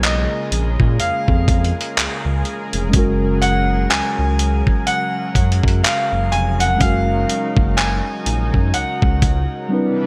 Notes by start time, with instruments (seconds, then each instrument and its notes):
Already playing: analog synth bass B1, analog synth pad C#3 G#3 G#4 A#4, tine electric piano A#3 C#4 F4 G#4 A#4
0.03 grand piano D#5, clap, closed hi-hat
0.52 analog synth bass A#1, closed hi-hat
0.80 analog synth bass A#2, kick
1.00 analog synth bass F2, grand piano F5, closed hi-hat
1.28 analog synth bass F2, kick
1.48 kick, closed hi-hat
1.64 closed hi-hat
1.81 closed hi-hat
1.97 analog synth bass C#2, clap, closed hi-hat
2.25 analog synth bass C#2
2.45 closed hi-hat
2.73 analog synth bass F1, closed hi-hat
2.89 tine electric piano G#3 C#4
2.93 analog synth bass F#1, analog synth pad C#3 F#3, tine electric piano F#4, kick, closed hi-hat
2.99 tine electric piano A#4
3.42 grand piano F#5, closed hi-hat
3.90 analog synth bass C#2, grand piano G#5, clap, closed hi-hat
4.18 analog synth bass C#2
4.39 closed hi-hat
4.67 kick
4.87 grand piano F#5, closed hi-hat
5.35 analog synth bass F#2, kick, closed hi-hat
5.52 closed hi-hat
5.63 analog synth bass F#2, kick
5.68 closed hi-hat
5.83 grand piano F5, clap, closed hi-hat
6.12 analog synth bass F#1
6.32 analog synth bass F1, grand piano G#5, closed hi-hat
6.60 grand piano F#5, closed hi-hat
6.76 tine electric piano G#3 C#4
6.80 analog synth bass F#1, analog synth pad D#4, tine electric piano F#4, grand piano F5, kick, closed hi-hat
6.86 tine electric piano A#4
7.29 closed hi-hat
7.57 analog synth bass F#1, kick
7.77 grand piano G#5, clap, closed hi-hat
8.26 analog synth bass A#1, closed hi-hat
8.54 analog synth bass F#2, kick
8.74 analog synth bass C#2, grand piano F#5, closed hi-hat
9.02 analog synth bass C#2, kick
9.22 kick, closed hi-hat
9.69 analog synth pad C3 E3 G3 D4 B4, tine electric piano G3 C4 D4 E4
9.74 tine electric piano B4